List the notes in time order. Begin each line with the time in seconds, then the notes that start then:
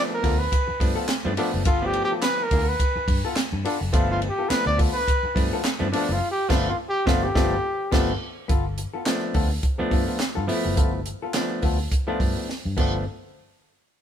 Already playing: F3 A3 B3 D4
0.11 A#4, muted hollow-body jazz guitar stroke
0.23 D2 B3 F4 A4, kick, open hi-hat, ride bell
0.39 B4, muted hollow-body jazz guitar stroke
0.52 muted hollow-body jazz guitar stroke, kick, hi-hat pedal, ride bell
0.68 muted hollow-body jazz guitar stroke, muted fingered electric bass stroke
0.80 G2 F3 A3 B3 D4, kick, open hi-hat, ride bell
0.96 B3 F4 A4
1.09 snare, clap, hi-hat pedal, ride bell
1.25 G2 F3 A3 B3 D4, muted hollow-body jazz guitar stroke
1.37 F3 A3 B3 D4 F4 A4, open hi-hat, ride bell
1.54 F#1, muted hollow-body jazz guitar stroke
1.65 G1 B3 F4 A4, kick, hi-hat pedal, ride bell
1.81 F3 A3 B3 D4 G4, muted hollow-body jazz guitar stroke
1.93 muted hollow-body jazz guitar stroke, ride bell
2.04 G4
2.11 B3 F4 A4
2.22 B4, snare, clap, ride bell
2.40 A#4, muted hollow-body jazz guitar stroke
2.51 D2 B3 F4 A4, kick, open hi-hat, ride bell
2.68 B4, muted hollow-body jazz guitar stroke
2.80 muted hollow-body jazz guitar stroke, kick, hi-hat pedal, ride bell
2.96 muted fingered electric bass stroke, muted hollow-body jazz guitar stroke
3.08 G2, kick, open hi-hat, ride bell
3.25 B3 F4 A4
3.36 muted hollow-body jazz guitar stroke, snare, clap, hi-hat pedal, ride bell
3.53 G2, muted hollow-body jazz guitar stroke
3.65 B3 D4 F4 A4, open hi-hat, ride bell
3.81 F#1, muted hollow-body jazz guitar stroke
3.92 G1 F3 A3 B3 D4 F4 A4, kick, hi-hat pedal, ride bell
4.10 F4, muted hollow-body jazz guitar stroke
4.22 muted hollow-body jazz guitar stroke, ride bell
4.29 G4
4.39 B3 F4 A4
4.49 F3 A3 B3 D4 B4, muted fingered electric bass stroke, snare, clap, ride bell
4.66 D2 D5, muted hollow-body jazz guitar stroke
4.78 B3 F4 A4, kick, open hi-hat, ride bell
4.93 B4, muted hollow-body jazz guitar stroke
5.08 muted hollow-body jazz guitar stroke, kick, hi-hat pedal, ride bell
5.23 muted fingered electric bass stroke, muted hollow-body jazz guitar stroke
5.35 G2 F3 A3 B3 D4, kick, open hi-hat, ride bell
5.53 B3 F4 A4
5.64 snare, clap, hi-hat pedal, ride bell
5.79 G2 F3 A3 B3 D4, muted hollow-body jazz guitar stroke
5.92 F3 A3 B3 D4 F4 A4, open hi-hat, ride bell
6.09 F#1 F4
6.31 G4
6.49 G1 F3 A3 B3 D4 F4 A4, kick, snare, crash
6.69 F4
6.89 G4
7.06 G1 F3 A3 B3 D4 F4 A4, kick, snare
7.23 G4
7.35 G1 F3 A3 B3 D4 F4 A4, kick, snare
7.91 G1 F3 A3 B3 D4 F4 A4, kick, snare, crash
8.48 G1 B3 F4 A4, kick, closed hi-hat
8.78 muted hollow-body jazz guitar stroke, closed hi-hat
8.93 B3 F4 A4
9.06 F3 A3 B3 D4, muted hollow-body jazz guitar stroke, snare, clap, closed hi-hat
9.22 muted hollow-body jazz guitar stroke
9.34 D2 B3 F4 A4, kick, open hi-hat
9.50 muted hollow-body jazz guitar stroke
9.62 muted hollow-body jazz guitar stroke, kick, closed hi-hat
9.78 F3 A3 B3 D4, muted hollow-body jazz guitar stroke, muted fingered electric bass stroke
9.91 G2 B3 F4 A4, kick, open hi-hat
10.06 B3 F4 A4
10.20 muted hollow-body jazz guitar stroke, snare, clap, closed hi-hat
10.35 G2 B3 F4 A4
10.47 F3 A3 B3 E4, muted hollow-body jazz guitar stroke, open hi-hat
10.64 F#1, muted hollow-body jazz guitar stroke
10.76 G1 B3 F4 A4, kick, closed hi-hat
10.93 muted hollow-body jazz guitar stroke
11.06 muted hollow-body jazz guitar stroke, closed hi-hat
11.22 B3 F4 A4
11.34 F3 A3 B3 D4, muted hollow-body jazz guitar stroke, snare, clap, closed hi-hat
11.51 muted hollow-body jazz guitar stroke
11.62 D2 B3 F4 A4, kick, open hi-hat
11.80 muted hollow-body jazz guitar stroke
11.92 muted hollow-body jazz guitar stroke, kick, closed hi-hat
12.07 F3 A3 B3 D4 F4 A4, muted fingered electric bass stroke
12.20 G2, muted hollow-body jazz guitar stroke, kick, open hi-hat
12.37 muted hollow-body jazz guitar stroke
12.48 muted hollow-body jazz guitar stroke, snare
12.65 G2
12.77 G1 F3 A3 B3 D4 F4 A4, kick, crash